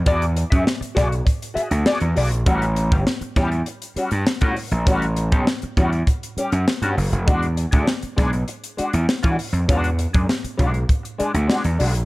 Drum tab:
HH |xxxx-xxxxxxx-xox|xxxx-xxxxxxx-xox|xxxx-xxxxxxx-xox|xxxx-xxxxxxx-xox|
SD |----o-o-----o---|----o-o-----o---|----o-------o---|----o-o-----o---|
BD |o--o--o-o-------|o--o--o------o--|o--o--o-o-------|o--o--o------o--|

HH |xxxx-xxxxxxx-xox|
SD |----o-------o---|
BD |o--o--o-o-------|